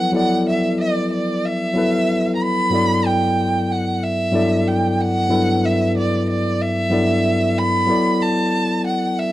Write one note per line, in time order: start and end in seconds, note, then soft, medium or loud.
0.00 2.73 F3 medium
0.00 0.12 F#3 medium
0.00 0.13 B3 medium
0.00 0.14 E4 medium
0.00 0.15 A4 medium
0.00 1.78 B4 medium
0.00 0.15 F#5 loud
0.12 1.22 F#3 medium
0.12 1.23 B3 medium
0.12 1.24 E4 medium
0.12 1.24 A4 medium
0.16 1.25 D5 medium
0.16 0.45 F#5 loud
0.49 0.77 E5 medium
0.81 1.09 D5 medium
1.13 1.47 D5 medium
1.45 2.34 E5 medium
1.74 2.57 F#3 medium
1.74 2.58 B3 medium
1.74 2.58 E4 medium
1.74 2.59 A4 medium
1.78 2.59 B4 medium
2.35 2.44 A#5 medium
2.42 3.08 B5 loud
2.70 3.80 G2 medium
2.70 3.81 F#3 medium
2.70 3.81 B3 medium
2.70 3.82 E4 medium
2.70 3.82 A4 medium
2.74 3.83 D5 medium
3.07 3.73 G5 medium
3.72 4.05 F#5 medium
4.04 4.69 E5 medium
4.31 5.15 G2 medium
4.31 5.15 F#3 medium
4.31 5.16 B3 medium
4.31 5.16 E4 medium
4.31 5.17 A4 medium
4.35 5.17 D5 medium
4.68 5.02 G5 medium
5.01 5.67 F#5 loud
5.28 6.39 G2 medium
5.28 6.39 F#3 medium
5.28 6.39 B3 medium
5.28 6.40 E4 medium
5.28 6.40 A4 medium
5.33 6.41 B4 medium
5.65 5.95 E5 medium
5.98 6.26 D5 medium
6.30 6.63 D5 medium
6.61 7.59 E5 loud
6.89 7.73 G2 medium
6.89 7.73 F#3 medium
6.89 7.74 B3 medium
6.89 7.74 E4 medium
6.89 7.75 A4 medium
6.89 7.75 D5 medium
7.58 8.23 B5 loud
7.86 8.97 F#3 medium
7.86 8.97 B3 medium
7.86 8.98 E4 medium
7.86 8.98 A4 medium
7.91 8.99 D5 medium
8.22 8.85 A5 medium
8.87 9.21 F#5 medium
9.19 9.32 E5 medium